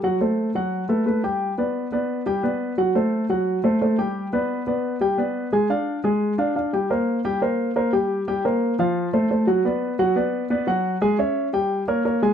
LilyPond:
\new Staff \with { instrumentName = "Grand piano" } { \time 4/4 \key g \major \tempo 4 = 175 <fis fis' fis''>8 <a a' c''>4 <fis fis' fis''>4 <a a' b'>8 <a a' b'>8 <g g' g''>8~ | <g g' g''>8 <b b' d''>4 <b b' d''>4 <g g' g''>8 <b b' d''>4 | <fis fis' fis''>8 <a a' c''>4 <fis fis' fis''>4 <a a' c''>8 <a a' c''>8 <g g' g''>8~ | <g g' g''>8 <b b' d''>4 <b b' d''>4 <g g' g''>8 <b b' d''>4 |
<aes aes' aes''>8 <d' d'' f''>4 <aes aes' aes''>4 <d' d'' f''>8 <d' d'' f''>8 <g g' g''>8 | \key g \phrygian <bes bes' c''>4 <g g' g''>8 <bes bes' c''>4 <bes bes' c''>8 <g g' g''>4 | <g g' g''>8 <bes bes' c''>4 <f f' f''>4 <a a' c''>8 <a a' c''>8 <ges ges' ges''>8 | <b b' d''>4 <fis fis' fis''>8 <b b' d''>4 <b b' d''>8 <fis fis' fis''>4 |
<aes aes' aes''>8 <des' des'' fes''>4 <g g' g''>4 <bes bes' des''>8 <bes bes' des''>8 <aes aes' aes''>8 | }